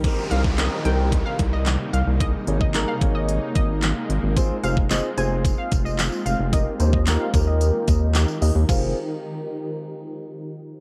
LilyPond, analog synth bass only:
\new Staff \with { instrumentName = "Analog synth bass" } { \clef bass \time 4/4 \key f \minor \tempo 4 = 111 r8 c,4 c,4 c,4 c,16 c,16~ | c,8 aes,,4 aes,,4 aes,,4 aes,,16 aes,,16~ | aes,,8 f,,4 f,,4 f,,4 f,,16 f,,16~ | f,,8 ees,4 ees,4 ees,4 ees,16 ees,16 |
f,,8 r2. r8 | }